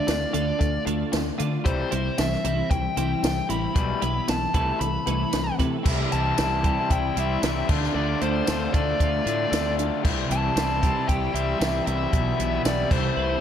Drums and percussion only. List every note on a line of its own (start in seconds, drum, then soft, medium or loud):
0.08 snare loud
0.08 closed hi-hat medium
0.08 tambourine loud
0.34 closed hi-hat medium
0.61 kick medium
0.61 closed hi-hat medium
0.87 closed hi-hat medium
1.13 snare loud
1.13 closed hi-hat medium
1.13 tambourine loud
1.39 closed hi-hat medium
1.66 kick medium
1.66 closed hi-hat medium
1.92 closed hi-hat medium
2.18 snare loud
2.18 closed hi-hat medium
2.18 tambourine loud
2.32 snare soft
2.45 closed hi-hat medium
2.71 kick medium
2.71 closed hi-hat medium
2.97 closed hi-hat medium
3.24 snare loud
3.24 closed hi-hat medium
3.24 tambourine loud
3.50 closed hi-hat medium
3.76 kick loud
3.76 closed hi-hat medium
4.02 closed hi-hat medium
4.28 snare loud
4.28 closed hi-hat medium
4.28 tambourine loud
4.54 kick medium
4.54 closed hi-hat medium
4.81 closed hi-hat medium
5.07 closed hi-hat medium
5.33 snare loud
5.33 closed hi-hat medium
5.33 tambourine loud
5.59 kick medium
5.59 closed hi-hat medium
5.86 kick loud
5.86 crash loud
6.12 closed hi-hat medium
6.38 snare loud
6.38 closed hi-hat medium
6.38 tambourine loud
6.64 kick medium
6.64 closed hi-hat medium
6.90 kick medium
6.90 closed hi-hat medium
7.17 closed hi-hat medium
7.43 snare loud
7.43 closed hi-hat medium
7.43 tambourine loud
7.69 kick loud
7.69 crash medium
7.83 snare soft
8.21 closed hi-hat medium
8.47 snare loud
8.47 closed hi-hat loud
8.47 tambourine loud
8.74 kick medium
8.74 closed hi-hat medium
9.00 kick medium
9.00 closed hi-hat medium
9.27 closed hi-hat medium
9.53 snare loud
9.53 closed hi-hat loud
9.53 tambourine loud
9.79 closed hi-hat medium
10.05 kick loud
10.05 crash medium
10.31 closed hi-hat medium
10.57 snare loud
10.57 closed hi-hat medium
10.57 tambourine loud
10.83 kick medium
10.83 closed hi-hat medium
11.09 kick medium
11.09 closed hi-hat medium
11.35 closed hi-hat medium
11.61 snare loud
11.61 closed hi-hat loud
11.61 tambourine loud
11.87 closed hi-hat medium
12.13 kick medium
12.13 closed hi-hat medium
12.40 closed hi-hat medium
12.65 snare loud
12.65 closed hi-hat loud
12.65 tambourine loud
12.91 kick loud
12.91 crash medium